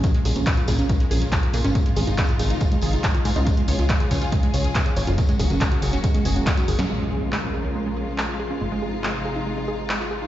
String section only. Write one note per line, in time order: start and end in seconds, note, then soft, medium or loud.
0.04 1.73 C#3 medium
0.04 5.14 F3 medium
0.04 6.85 G#3 medium
0.04 1.73 A#3 medium
0.04 5.14 F4 medium
1.75 3.45 C3 medium
1.75 3.45 D#4 medium
3.47 6.86 C#3 medium
3.47 5.16 G#4 medium
5.18 6.88 F#3 medium
5.18 6.88 A#3 medium
5.18 6.88 F#4 medium
6.89 8.59 C#3 medium
6.89 10.27 F3 medium
6.89 10.27 G#3 medium
6.89 8.59 A#3 medium
6.89 10.27 F4 medium
8.61 10.27 C3 medium
8.61 10.27 D#4 medium